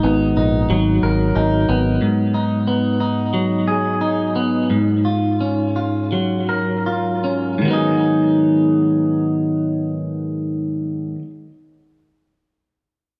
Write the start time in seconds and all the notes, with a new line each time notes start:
Already playing: G#2 D#4
0.03 G#1 B3
0.37 A#1 D#4
0.70 G#1 F#3
1.03 G#1 A#4
1.35 G#1 D#4
1.69 G#1 B3
2.02 G#2
2.34 D#4
2.67 B3
3.00 D#4
3.34 F#3
3.68 G#4
4.01 D#4
4.36 B3
4.70 G#2
5.05 F4
5.41 C#4
5.76 F4
6.12 F#3
6.49 A#4
6.86 F4
7.24 C#4
7.58 G#2 D#3
7.65 F#3 B3
7.71 D#4 G#4